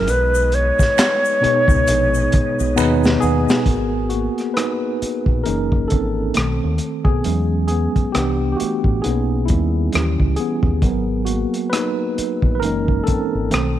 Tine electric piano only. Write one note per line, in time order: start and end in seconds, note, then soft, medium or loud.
1.41 1.75 B2 medium
1.41 1.76 B3 medium
1.41 1.76 D#4 medium
1.41 1.76 G#4 medium
1.41 1.77 C#5 medium
2.76 3.10 B2 medium
2.76 3.10 B3 medium
2.76 3.11 D#4 medium
2.76 3.11 G#4 medium
2.76 3.11 B4 medium
3.21 3.66 B3 medium
3.21 4.13 G#4 medium
3.66 5.42 B3 soft
3.66 4.08 F#4 soft
3.66 5.41 A#4 soft
4.09 4.32 A#3 soft
4.09 4.30 F#4 medium
4.54 5.42 D#4 medium
4.54 5.47 B4 medium
5.44 6.31 E3 soft
5.44 6.31 A#3 soft
5.44 5.87 C#4 medium
5.44 6.31 D#4 soft
5.44 6.31 G#4 soft
5.44 5.90 A#4 medium
5.88 6.34 C4 medium
5.88 7.09 A4 medium
6.34 6.97 D#3 soft
6.34 6.98 A3 soft
6.34 6.98 C4 soft
7.04 7.66 B3 medium
7.04 7.66 G#4 medium
7.25 8.10 F#3 soft
7.25 8.10 G#3 soft
7.25 8.11 C#4 medium
7.67 8.12 B3 medium
7.67 8.10 G#4 medium
8.12 8.77 E3 soft
8.12 8.51 B3 medium
8.12 8.78 D4 medium
8.12 8.49 G4 medium
8.52 8.58 G4 medium
8.57 9.01 A3 soft
8.57 8.99 F#4 medium
9.02 9.89 A#3 soft
9.02 9.46 B3 medium
9.02 9.90 C#4 medium
9.02 9.89 D#4 soft
9.02 9.49 G#4 medium
9.46 10.34 G3 medium
9.46 10.39 E4 medium
9.93 10.79 E3 soft
9.93 10.79 C#4 medium
9.93 10.79 G4 soft
10.36 10.83 B3 medium
10.36 11.29 G#4 medium
10.83 12.13 F#3 soft
10.83 12.14 B3 medium
10.83 12.13 A#4 soft
11.25 11.70 A#3 medium
11.25 11.72 F#4 medium
11.70 12.53 D#4 medium
11.70 12.54 B4 medium
12.55 12.61 B4 medium
12.60 13.25 E3 soft
12.60 13.25 G#3 soft
12.60 13.25 A#3 soft
12.60 13.04 C#4 medium
12.60 13.25 D#4 medium
12.60 13.02 A#4 medium
13.04 13.50 C4 medium
13.04 13.79 A4 medium
13.50 13.79 D#3 soft
13.50 13.79 A3 soft
13.50 13.79 C4 medium